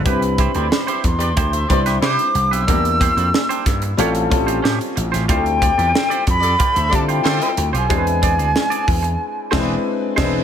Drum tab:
CC |----------------|----------------|----------------|----------x---x-|
HH |xxxx-xxxxxxx-xxx|xxxx-xxxxxxx-xxx|xxxx-xxxxxxx-xxx|xxxx-xox--------|
SD |----o------oo---|----o-o-----o--o|----o-------o---|----o-----o---o-|
BD |o-o---o-o-o-----|o-o---o---o-----|o-o---o-o-o-----|o-o---o---o---o-|